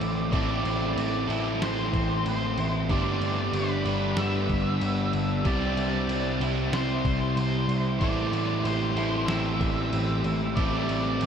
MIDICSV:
0, 0, Header, 1, 7, 480
1, 0, Start_track
1, 0, Key_signature, 0, "minor"
1, 0, Tempo, 641026
1, 243, Time_signature, 4, 2, 24, 8
1, 8431, End_track
2, 0, Start_track
2, 0, Title_t, "Lead electric guitar"
2, 0, Program_c, 0, 29
2, 0, Note_on_c, 0, 74, 104
2, 213, Note_off_c, 0, 74, 0
2, 244, Note_on_c, 0, 74, 84
2, 934, Note_off_c, 0, 74, 0
2, 1219, Note_on_c, 0, 72, 84
2, 1693, Note_off_c, 0, 72, 0
2, 1702, Note_on_c, 0, 72, 73
2, 2028, Note_off_c, 0, 72, 0
2, 2176, Note_on_c, 0, 74, 96
2, 2657, Note_on_c, 0, 71, 89
2, 2664, Note_off_c, 0, 74, 0
2, 3130, Note_on_c, 0, 76, 105
2, 3144, Note_off_c, 0, 71, 0
2, 4086, Note_off_c, 0, 76, 0
2, 4089, Note_on_c, 0, 74, 80
2, 4776, Note_off_c, 0, 74, 0
2, 5047, Note_on_c, 0, 72, 78
2, 5512, Note_off_c, 0, 72, 0
2, 5521, Note_on_c, 0, 72, 67
2, 5856, Note_off_c, 0, 72, 0
2, 5981, Note_on_c, 0, 74, 92
2, 6470, Note_on_c, 0, 72, 85
2, 6486, Note_off_c, 0, 74, 0
2, 6937, Note_on_c, 0, 76, 99
2, 6970, Note_off_c, 0, 72, 0
2, 7901, Note_off_c, 0, 76, 0
2, 7904, Note_on_c, 0, 74, 86
2, 8431, Note_off_c, 0, 74, 0
2, 8431, End_track
3, 0, Start_track
3, 0, Title_t, "Clean electric guitar"
3, 0, Program_c, 1, 27
3, 0, Note_on_c, 1, 60, 67
3, 8, Note_on_c, 1, 64, 67
3, 240, Note_off_c, 1, 60, 0
3, 249, Note_on_c, 1, 60, 72
3, 722, Note_off_c, 1, 60, 0
3, 731, Note_on_c, 1, 60, 60
3, 960, Note_off_c, 1, 64, 0
3, 969, Note_on_c, 1, 64, 67
3, 1200, Note_off_c, 1, 60, 0
3, 1209, Note_on_c, 1, 60, 75
3, 1445, Note_off_c, 1, 60, 0
3, 1454, Note_on_c, 1, 60, 72
3, 1680, Note_off_c, 1, 60, 0
3, 1689, Note_on_c, 1, 60, 67
3, 1919, Note_off_c, 1, 64, 0
3, 1928, Note_on_c, 1, 64, 66
3, 2166, Note_off_c, 1, 60, 0
3, 2166, Note_off_c, 1, 64, 0
3, 2173, Note_on_c, 1, 55, 67
3, 2649, Note_off_c, 1, 55, 0
3, 2652, Note_on_c, 1, 55, 60
3, 2888, Note_on_c, 1, 62, 71
3, 3129, Note_on_c, 1, 59, 76
3, 3368, Note_off_c, 1, 55, 0
3, 3370, Note_on_c, 1, 55, 68
3, 3607, Note_off_c, 1, 59, 0
3, 3616, Note_on_c, 1, 59, 76
3, 3841, Note_off_c, 1, 62, 0
3, 3850, Note_on_c, 1, 62, 62
3, 4085, Note_off_c, 1, 55, 0
3, 4087, Note_off_c, 1, 62, 0
3, 4088, Note_on_c, 1, 55, 72
3, 4090, Note_off_c, 1, 59, 0
3, 4564, Note_off_c, 1, 55, 0
3, 4567, Note_on_c, 1, 55, 67
3, 4805, Note_on_c, 1, 64, 65
3, 5041, Note_on_c, 1, 60, 75
3, 5279, Note_off_c, 1, 55, 0
3, 5282, Note_on_c, 1, 55, 69
3, 5519, Note_off_c, 1, 60, 0
3, 5522, Note_on_c, 1, 60, 75
3, 5753, Note_off_c, 1, 64, 0
3, 5756, Note_on_c, 1, 64, 68
3, 5995, Note_off_c, 1, 55, 0
3, 5998, Note_on_c, 1, 55, 71
3, 6481, Note_off_c, 1, 55, 0
3, 6484, Note_on_c, 1, 55, 57
3, 6715, Note_off_c, 1, 64, 0
3, 6718, Note_on_c, 1, 64, 68
3, 6961, Note_off_c, 1, 60, 0
3, 6964, Note_on_c, 1, 60, 71
3, 7198, Note_off_c, 1, 55, 0
3, 7201, Note_on_c, 1, 55, 71
3, 7433, Note_off_c, 1, 60, 0
3, 7441, Note_on_c, 1, 60, 63
3, 7673, Note_off_c, 1, 64, 0
3, 7682, Note_on_c, 1, 64, 68
3, 7917, Note_off_c, 1, 55, 0
3, 7920, Note_on_c, 1, 55, 69
3, 8400, Note_off_c, 1, 55, 0
3, 8403, Note_on_c, 1, 55, 61
3, 8431, Note_off_c, 1, 55, 0
3, 8431, Note_off_c, 1, 60, 0
3, 8431, Note_off_c, 1, 64, 0
3, 8431, End_track
4, 0, Start_track
4, 0, Title_t, "Overdriven electric guitar"
4, 0, Program_c, 2, 29
4, 0, Note_on_c, 2, 45, 72
4, 0, Note_on_c, 2, 52, 81
4, 0, Note_on_c, 2, 60, 78
4, 0, Note_on_c, 2, 64, 85
4, 0, Note_on_c, 2, 69, 80
4, 224, Note_off_c, 2, 45, 0
4, 230, Note_off_c, 2, 64, 0
4, 231, Note_off_c, 2, 60, 0
4, 232, Note_off_c, 2, 52, 0
4, 233, Note_on_c, 2, 45, 93
4, 241, Note_on_c, 2, 52, 97
4, 242, Note_on_c, 2, 60, 85
4, 249, Note_off_c, 2, 69, 0
4, 250, Note_on_c, 2, 64, 105
4, 252, Note_on_c, 2, 69, 102
4, 944, Note_off_c, 2, 45, 0
4, 948, Note_off_c, 2, 52, 0
4, 949, Note_off_c, 2, 60, 0
4, 952, Note_off_c, 2, 64, 0
4, 953, Note_off_c, 2, 69, 0
4, 956, Note_on_c, 2, 69, 93
4, 965, Note_on_c, 2, 64, 77
4, 967, Note_on_c, 2, 60, 78
4, 973, Note_on_c, 2, 52, 75
4, 974, Note_on_c, 2, 45, 72
4, 2146, Note_off_c, 2, 69, 0
4, 2150, Note_off_c, 2, 64, 0
4, 2151, Note_off_c, 2, 60, 0
4, 2154, Note_off_c, 2, 52, 0
4, 2155, Note_off_c, 2, 45, 0
4, 2165, Note_on_c, 2, 43, 88
4, 2168, Note_on_c, 2, 50, 103
4, 2172, Note_on_c, 2, 55, 99
4, 2176, Note_on_c, 2, 59, 94
4, 2178, Note_on_c, 2, 62, 107
4, 2183, Note_on_c, 2, 67, 99
4, 2870, Note_off_c, 2, 43, 0
4, 2871, Note_off_c, 2, 50, 0
4, 2875, Note_off_c, 2, 59, 0
4, 2877, Note_off_c, 2, 62, 0
4, 2884, Note_off_c, 2, 67, 0
4, 2887, Note_on_c, 2, 67, 85
4, 2890, Note_on_c, 2, 62, 80
4, 2894, Note_on_c, 2, 59, 85
4, 2896, Note_off_c, 2, 55, 0
4, 2899, Note_on_c, 2, 55, 72
4, 2901, Note_on_c, 2, 50, 81
4, 2903, Note_on_c, 2, 43, 73
4, 4072, Note_off_c, 2, 62, 0
4, 4074, Note_off_c, 2, 59, 0
4, 4075, Note_off_c, 2, 50, 0
4, 4078, Note_on_c, 2, 48, 93
4, 4079, Note_off_c, 2, 43, 0
4, 4083, Note_off_c, 2, 55, 0
4, 4086, Note_on_c, 2, 55, 94
4, 4089, Note_on_c, 2, 60, 103
4, 4097, Note_on_c, 2, 64, 98
4, 4100, Note_off_c, 2, 67, 0
4, 4103, Note_on_c, 2, 67, 110
4, 4786, Note_off_c, 2, 48, 0
4, 4799, Note_off_c, 2, 67, 0
4, 4802, Note_on_c, 2, 67, 91
4, 4806, Note_off_c, 2, 64, 0
4, 4809, Note_on_c, 2, 64, 84
4, 4812, Note_off_c, 2, 55, 0
4, 4812, Note_off_c, 2, 60, 0
4, 4815, Note_on_c, 2, 55, 82
4, 4815, Note_on_c, 2, 60, 83
4, 4821, Note_on_c, 2, 48, 70
4, 5993, Note_off_c, 2, 48, 0
4, 5996, Note_off_c, 2, 55, 0
4, 5996, Note_on_c, 2, 45, 89
4, 5999, Note_on_c, 2, 52, 95
4, 6003, Note_off_c, 2, 60, 0
4, 6006, Note_on_c, 2, 60, 102
4, 6007, Note_off_c, 2, 64, 0
4, 6010, Note_on_c, 2, 64, 102
4, 6012, Note_off_c, 2, 67, 0
4, 6015, Note_on_c, 2, 69, 108
4, 6710, Note_off_c, 2, 69, 0
4, 6713, Note_on_c, 2, 69, 87
4, 6717, Note_off_c, 2, 64, 0
4, 6720, Note_on_c, 2, 64, 86
4, 6722, Note_off_c, 2, 60, 0
4, 6725, Note_on_c, 2, 60, 79
4, 6727, Note_off_c, 2, 52, 0
4, 6730, Note_on_c, 2, 52, 74
4, 6731, Note_off_c, 2, 45, 0
4, 6734, Note_on_c, 2, 45, 72
4, 7906, Note_off_c, 2, 64, 0
4, 7907, Note_off_c, 2, 45, 0
4, 7908, Note_off_c, 2, 52, 0
4, 7909, Note_off_c, 2, 60, 0
4, 7916, Note_on_c, 2, 45, 93
4, 7917, Note_on_c, 2, 52, 99
4, 7923, Note_on_c, 2, 60, 98
4, 7928, Note_on_c, 2, 64, 99
4, 7930, Note_off_c, 2, 69, 0
4, 7933, Note_on_c, 2, 69, 108
4, 8431, Note_off_c, 2, 45, 0
4, 8431, Note_off_c, 2, 52, 0
4, 8431, Note_off_c, 2, 60, 0
4, 8431, Note_off_c, 2, 64, 0
4, 8431, Note_off_c, 2, 69, 0
4, 8431, End_track
5, 0, Start_track
5, 0, Title_t, "Overdriven electric guitar"
5, 0, Program_c, 3, 29
5, 0, Note_on_c, 3, 45, 104
5, 0, Note_on_c, 3, 52, 108
5, 0, Note_on_c, 3, 57, 113
5, 0, Note_on_c, 3, 60, 111
5, 0, Note_on_c, 3, 64, 109
5, 225, Note_off_c, 3, 45, 0
5, 230, Note_off_c, 3, 52, 0
5, 238, Note_off_c, 3, 60, 0
5, 242, Note_off_c, 3, 64, 0
5, 255, Note_off_c, 3, 57, 0
5, 258, Note_on_c, 3, 57, 102
5, 2157, Note_off_c, 3, 57, 0
5, 6005, Note_on_c, 3, 57, 101
5, 7922, Note_off_c, 3, 57, 0
5, 7925, Note_on_c, 3, 57, 102
5, 8431, Note_off_c, 3, 57, 0
5, 8431, End_track
6, 0, Start_track
6, 0, Title_t, "Picked electric bass"
6, 0, Program_c, 4, 34
6, 9, Note_on_c, 4, 33, 83
6, 237, Note_off_c, 4, 33, 0
6, 241, Note_on_c, 4, 33, 102
6, 473, Note_off_c, 4, 33, 0
6, 484, Note_on_c, 4, 33, 84
6, 715, Note_off_c, 4, 33, 0
6, 727, Note_on_c, 4, 33, 81
6, 956, Note_off_c, 4, 33, 0
6, 965, Note_on_c, 4, 33, 92
6, 1195, Note_off_c, 4, 33, 0
6, 1211, Note_on_c, 4, 33, 90
6, 1439, Note_off_c, 4, 33, 0
6, 1447, Note_on_c, 4, 33, 83
6, 1677, Note_off_c, 4, 33, 0
6, 1692, Note_on_c, 4, 33, 86
6, 1919, Note_off_c, 4, 33, 0
6, 1937, Note_on_c, 4, 33, 81
6, 2162, Note_off_c, 4, 33, 0
6, 2167, Note_on_c, 4, 31, 95
6, 2396, Note_off_c, 4, 31, 0
6, 2405, Note_on_c, 4, 31, 86
6, 2636, Note_off_c, 4, 31, 0
6, 2641, Note_on_c, 4, 31, 86
6, 2874, Note_off_c, 4, 31, 0
6, 2886, Note_on_c, 4, 31, 96
6, 3116, Note_off_c, 4, 31, 0
6, 3123, Note_on_c, 4, 31, 86
6, 3354, Note_off_c, 4, 31, 0
6, 3367, Note_on_c, 4, 31, 84
6, 3596, Note_off_c, 4, 31, 0
6, 3604, Note_on_c, 4, 31, 95
6, 3835, Note_off_c, 4, 31, 0
6, 3849, Note_on_c, 4, 31, 89
6, 4077, Note_off_c, 4, 31, 0
6, 4085, Note_on_c, 4, 36, 101
6, 4310, Note_off_c, 4, 36, 0
6, 4315, Note_on_c, 4, 36, 92
6, 4550, Note_off_c, 4, 36, 0
6, 4555, Note_on_c, 4, 36, 87
6, 4790, Note_off_c, 4, 36, 0
6, 4795, Note_on_c, 4, 36, 91
6, 5025, Note_off_c, 4, 36, 0
6, 5030, Note_on_c, 4, 36, 84
6, 5267, Note_off_c, 4, 36, 0
6, 5279, Note_on_c, 4, 36, 89
6, 5512, Note_off_c, 4, 36, 0
6, 5515, Note_on_c, 4, 36, 93
6, 5745, Note_off_c, 4, 36, 0
6, 5750, Note_on_c, 4, 36, 85
6, 5987, Note_off_c, 4, 36, 0
6, 5993, Note_on_c, 4, 33, 94
6, 6229, Note_off_c, 4, 33, 0
6, 6233, Note_on_c, 4, 33, 80
6, 6469, Note_off_c, 4, 33, 0
6, 6472, Note_on_c, 4, 33, 87
6, 6701, Note_off_c, 4, 33, 0
6, 6705, Note_on_c, 4, 33, 87
6, 6944, Note_off_c, 4, 33, 0
6, 6950, Note_on_c, 4, 33, 96
6, 7187, Note_off_c, 4, 33, 0
6, 7194, Note_on_c, 4, 33, 89
6, 7429, Note_off_c, 4, 33, 0
6, 7440, Note_on_c, 4, 33, 97
6, 7671, Note_off_c, 4, 33, 0
6, 7675, Note_on_c, 4, 33, 81
6, 7909, Note_off_c, 4, 33, 0
6, 7915, Note_on_c, 4, 33, 95
6, 8149, Note_off_c, 4, 33, 0
6, 8162, Note_on_c, 4, 33, 79
6, 8393, Note_off_c, 4, 33, 0
6, 8401, Note_on_c, 4, 33, 86
6, 8431, Note_off_c, 4, 33, 0
6, 8431, End_track
7, 0, Start_track
7, 0, Title_t, "Drums"
7, 10, Note_on_c, 9, 49, 56
7, 85, Note_off_c, 9, 49, 0
7, 243, Note_on_c, 9, 36, 112
7, 245, Note_on_c, 9, 49, 78
7, 318, Note_off_c, 9, 36, 0
7, 320, Note_off_c, 9, 49, 0
7, 489, Note_on_c, 9, 49, 59
7, 564, Note_off_c, 9, 49, 0
7, 731, Note_on_c, 9, 49, 81
7, 806, Note_off_c, 9, 49, 0
7, 973, Note_on_c, 9, 49, 55
7, 1048, Note_off_c, 9, 49, 0
7, 1213, Note_on_c, 9, 38, 110
7, 1213, Note_on_c, 9, 49, 86
7, 1288, Note_off_c, 9, 38, 0
7, 1288, Note_off_c, 9, 49, 0
7, 1448, Note_on_c, 9, 36, 88
7, 1449, Note_on_c, 9, 49, 60
7, 1523, Note_off_c, 9, 36, 0
7, 1524, Note_off_c, 9, 49, 0
7, 1691, Note_on_c, 9, 49, 71
7, 1766, Note_off_c, 9, 49, 0
7, 1929, Note_on_c, 9, 49, 58
7, 2004, Note_off_c, 9, 49, 0
7, 2167, Note_on_c, 9, 49, 74
7, 2168, Note_on_c, 9, 36, 103
7, 2242, Note_off_c, 9, 49, 0
7, 2243, Note_off_c, 9, 36, 0
7, 2408, Note_on_c, 9, 49, 55
7, 2483, Note_off_c, 9, 49, 0
7, 2647, Note_on_c, 9, 49, 76
7, 2722, Note_off_c, 9, 49, 0
7, 2887, Note_on_c, 9, 49, 52
7, 2962, Note_off_c, 9, 49, 0
7, 3121, Note_on_c, 9, 38, 113
7, 3121, Note_on_c, 9, 49, 73
7, 3196, Note_off_c, 9, 38, 0
7, 3196, Note_off_c, 9, 49, 0
7, 3366, Note_on_c, 9, 36, 86
7, 3366, Note_on_c, 9, 49, 54
7, 3441, Note_off_c, 9, 36, 0
7, 3441, Note_off_c, 9, 49, 0
7, 3605, Note_on_c, 9, 49, 77
7, 3680, Note_off_c, 9, 49, 0
7, 3843, Note_on_c, 9, 49, 55
7, 3918, Note_off_c, 9, 49, 0
7, 4082, Note_on_c, 9, 49, 76
7, 4084, Note_on_c, 9, 36, 107
7, 4157, Note_off_c, 9, 49, 0
7, 4158, Note_off_c, 9, 36, 0
7, 4323, Note_on_c, 9, 49, 58
7, 4398, Note_off_c, 9, 49, 0
7, 4562, Note_on_c, 9, 49, 83
7, 4637, Note_off_c, 9, 49, 0
7, 4801, Note_on_c, 9, 49, 59
7, 4876, Note_off_c, 9, 49, 0
7, 5040, Note_on_c, 9, 38, 105
7, 5040, Note_on_c, 9, 49, 84
7, 5115, Note_off_c, 9, 38, 0
7, 5115, Note_off_c, 9, 49, 0
7, 5279, Note_on_c, 9, 36, 82
7, 5279, Note_on_c, 9, 49, 62
7, 5354, Note_off_c, 9, 36, 0
7, 5354, Note_off_c, 9, 49, 0
7, 5520, Note_on_c, 9, 49, 77
7, 5595, Note_off_c, 9, 49, 0
7, 5759, Note_on_c, 9, 49, 55
7, 5834, Note_off_c, 9, 49, 0
7, 5997, Note_on_c, 9, 36, 110
7, 5997, Note_on_c, 9, 49, 71
7, 6071, Note_off_c, 9, 36, 0
7, 6072, Note_off_c, 9, 49, 0
7, 6239, Note_on_c, 9, 49, 57
7, 6314, Note_off_c, 9, 49, 0
7, 6479, Note_on_c, 9, 49, 74
7, 6554, Note_off_c, 9, 49, 0
7, 6715, Note_on_c, 9, 49, 50
7, 6790, Note_off_c, 9, 49, 0
7, 6952, Note_on_c, 9, 38, 114
7, 6952, Note_on_c, 9, 49, 74
7, 7027, Note_off_c, 9, 38, 0
7, 7027, Note_off_c, 9, 49, 0
7, 7195, Note_on_c, 9, 36, 85
7, 7195, Note_on_c, 9, 49, 62
7, 7270, Note_off_c, 9, 36, 0
7, 7270, Note_off_c, 9, 49, 0
7, 7434, Note_on_c, 9, 49, 75
7, 7509, Note_off_c, 9, 49, 0
7, 7670, Note_on_c, 9, 49, 54
7, 7745, Note_off_c, 9, 49, 0
7, 7913, Note_on_c, 9, 49, 73
7, 7915, Note_on_c, 9, 36, 116
7, 7988, Note_off_c, 9, 49, 0
7, 7990, Note_off_c, 9, 36, 0
7, 8155, Note_on_c, 9, 49, 57
7, 8230, Note_off_c, 9, 49, 0
7, 8392, Note_on_c, 9, 49, 75
7, 8431, Note_off_c, 9, 49, 0
7, 8431, End_track
0, 0, End_of_file